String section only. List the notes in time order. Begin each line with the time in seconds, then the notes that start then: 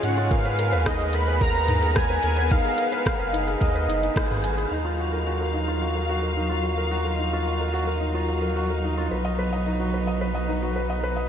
Already playing: C#3 G#3 F4
0.31 B3
4.71 F#3 D#4 F5
9.12 B3